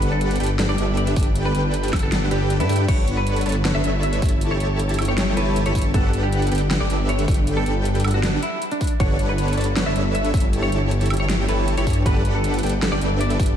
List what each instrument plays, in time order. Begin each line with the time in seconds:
0.02 detuned saw bass G1, supersaw synth D4 G4 A4 B4 F#5, closed hi-hat
0.12 clean electric guitar A4
0.21 closed hi-hat
0.31 closed hi-hat
0.36 closed hi-hat
0.40 detuned saw bass G1, supersaw synth D4 G4 A4 B4 G5, closed hi-hat
0.43 closed hi-hat
0.46 closed hi-hat
0.59 detuned saw bass G1, supersaw synth D4 G4 A4 B4 F#5, snare, closed hi-hat
0.69 detuned saw bass G1, supersaw synth D4 G4 A4 B4 G5, clean electric guitar D5
0.78 detuned saw bass G1, supersaw synth D4 G4 A4 B4 E5, closed hi-hat
0.97 clean electric guitar D5, closed hi-hat
1.07 closed hi-hat
1.16 detuned saw bass G1, kick, closed hi-hat, open hi-hat
1.23 closed hi-hat
1.36 closed hi-hat
1.45 clean electric guitar B4
1.55 detuned saw bass G1, supersaw synth D4 G4 A4 B4 G5, closed hi-hat
1.74 closed hi-hat
1.84 closed hi-hat
1.88 closed hi-hat
1.93 detuned saw bass G1, supersaw synth D4 G4 B4 F#5, kick, snare, closed hi-hat, high woodblock
1.96 closed hi-hat
1.99 clean electric guitar A4, closed hi-hat
2.12 snare, closed hi-hat
2.31 detuned saw bass G1, supersaw synth D4 G4 A4 B4 G5, clean electric guitar G4, closed hi-hat
2.50 closed hi-hat
2.60 detuned saw bass G2, supersaw synth D4 G4 A4 B4 A5, clean electric guitar E4, closed hi-hat
2.69 detuned saw bass G2, supersaw synth D4 G4 A4 B4 G5, closed hi-hat, open hi-hat
2.76 closed hi-hat
2.88 detuned saw bass G1, supersaw synth D4 B4 C#5, clean electric guitar C#5, kick, closed hi-hat, crash
3.07 detuned saw bass G1, supersaw synth D4 A4 B4 C#5 F#5, closed hi-hat
3.17 clean electric guitar B4
3.27 closed hi-hat
3.36 closed hi-hat
3.41 closed hi-hat
3.46 detuned saw bass G1, supersaw synth D4 A4 B4 C#5 A5, closed hi-hat
3.49 closed hi-hat
3.52 closed hi-hat
3.65 detuned saw bass G1, supersaw synth D4 A4 B4 C#5 F#5, snare, closed hi-hat
3.74 detuned saw bass G1, supersaw synth D4 A4 B4 C#5 A5, clean electric guitar E5
3.84 detuned saw bass G1, supersaw synth D4 A4 B4 C#5 E5, closed hi-hat
4.03 clean electric guitar E5, closed hi-hat
4.13 closed hi-hat
4.22 detuned saw bass G1, supersaw synth E4 G4 A4 C#5 A5, kick, closed hi-hat, open hi-hat
4.29 closed hi-hat
4.41 closed hi-hat
4.51 clean electric guitar C#5
4.60 detuned saw bass G1, supersaw synth E4 G4 A4 C#5 A5, closed hi-hat
4.79 closed hi-hat
4.89 closed hi-hat
4.94 closed hi-hat
4.98 detuned saw bass G1, supersaw synth E4 G4 A4 C#5 G5, closed hi-hat, high woodblock
5.02 closed hi-hat
5.05 clean electric guitar C#5, closed hi-hat
5.18 snare, closed hi-hat
5.37 detuned saw bass G1, supersaw synth E4 G4 A4 C#5 A5, clean electric guitar B4, closed hi-hat
5.56 closed hi-hat
5.66 detuned saw bass G1, supersaw synth E4 G4 A4 C#5 B5, clean electric guitar C#5, closed hi-hat
5.75 detuned saw bass G1, supersaw synth E4 G4 A4 C#5 A5, kick, closed hi-hat, open hi-hat
5.82 closed hi-hat
5.94 detuned saw bass G1, supersaw synth D4 G4 A4 B4 F#5, clean electric guitar A4, kick, closed hi-hat
6.13 detuned saw bass G1, supersaw synth D4 G4 A4 B4 F#5, closed hi-hat
6.23 clean electric guitar G4
6.33 closed hi-hat
6.42 closed hi-hat
6.47 closed hi-hat
6.51 detuned saw bass G1, supersaw synth D4 G4 A4 B4 G5, closed hi-hat
6.55 closed hi-hat
6.58 closed hi-hat
6.71 detuned saw bass G1, supersaw synth D4 G4 A4 B4 F#5, snare, closed hi-hat
6.80 detuned saw bass G1, supersaw synth D4 G4 A4 B4 G5, clean electric guitar D5
6.90 detuned saw bass G1, supersaw synth D4 G4 A4 B4 E5, closed hi-hat
7.09 clean electric guitar C#5, closed hi-hat
7.19 closed hi-hat
7.28 detuned saw bass G1, supersaw synth A4, kick, closed hi-hat, open hi-hat
7.34 closed hi-hat
7.47 closed hi-hat
7.57 clean electric guitar A4
7.66 detuned saw bass G1, supersaw synth D4 G4 A4 B4 G5, closed hi-hat
7.85 closed hi-hat
7.95 closed hi-hat
8.00 closed hi-hat
8.04 detuned saw bass G1, supersaw synth D4 G4 A4 B4 F#5, closed hi-hat, high woodblock
8.08 closed hi-hat
8.11 clean electric guitar F#4, closed hi-hat
8.23 snare, closed hi-hat
8.43 clean electric guitar E4, closed hi-hat
8.62 closed hi-hat
8.71 clean electric guitar D4, closed hi-hat
8.81 kick, closed hi-hat, open hi-hat
8.87 closed hi-hat
9.00 detuned saw bass G1, supersaw synth D4 A4 B4 C#5 F#5, clean electric guitar C#5, kick, closed hi-hat
9.19 detuned saw bass G1, supersaw synth D4 A4 B4 C#5 F#5, closed hi-hat
9.29 clean electric guitar B4
9.38 closed hi-hat
9.48 closed hi-hat
9.53 closed hi-hat
9.57 detuned saw bass G1, supersaw synth D4 A4 B4 C#5 A5, closed hi-hat
9.61 closed hi-hat
9.64 closed hi-hat
9.76 detuned saw bass G1, supersaw synth D4 A4 B4 C#5 F#5, snare, closed hi-hat
9.86 detuned saw bass G1, supersaw synth D4 A4 B4 C#5 A5, clean electric guitar E5
9.96 detuned saw bass G1, supersaw synth D4 A4 B4 C#5 E5, closed hi-hat
10.15 clean electric guitar E5, closed hi-hat
10.25 closed hi-hat
10.34 detuned saw bass G1, supersaw synth E4 G4 A4 A5, kick, closed hi-hat, open hi-hat
10.40 closed hi-hat
10.53 closed hi-hat
10.62 clean electric guitar C#5
10.72 detuned saw bass G1, supersaw synth E4 G4 A4 C#5 A5, closed hi-hat
10.91 closed hi-hat
11.01 closed hi-hat
11.06 closed hi-hat
11.10 detuned saw bass G1, supersaw synth E4 G4 A4 C#5 G5, closed hi-hat, high woodblock
11.14 closed hi-hat
11.17 clean electric guitar C#5, closed hi-hat
11.29 snare, closed hi-hat
11.49 detuned saw bass G1, supersaw synth E4 G4 A4 C#5 A5, clean electric guitar B4, closed hi-hat
11.68 closed hi-hat
11.77 detuned saw bass G1, supersaw synth E4 G4 A4 C#5 B5, clean electric guitar C#5, closed hi-hat
11.87 detuned saw bass G2, supersaw synth E4 G4 A4 C#5 A5, kick, closed hi-hat, open hi-hat
11.93 closed hi-hat
12.06 detuned saw bass G1, supersaw synth D4 G4 A4 B4 F#5, clean electric guitar B4, kick, closed hi-hat
12.25 detuned saw bass G1, supersaw synth D4 G4 A4 B4 F#5, closed hi-hat
12.35 clean electric guitar A4
12.44 closed hi-hat
12.54 closed hi-hat
12.59 closed hi-hat
12.63 detuned saw bass G1, supersaw synth D4 G4 A4 B4 G5, closed hi-hat
12.66 closed hi-hat
12.69 closed hi-hat
12.82 detuned saw bass G1, supersaw synth D4 G4 A4 B4 F#5, snare, closed hi-hat
12.92 detuned saw bass G1, supersaw synth D4 G4 A4 B4 G5, clean electric guitar D5
13.01 detuned saw bass G1, supersaw synth D4 G4 A4 B4 E5, closed hi-hat
13.20 clean electric guitar D5, closed hi-hat
13.30 closed hi-hat
13.39 detuned saw bass G1, supersaw synth G4 A4 B4, kick, closed hi-hat, open hi-hat
13.46 closed hi-hat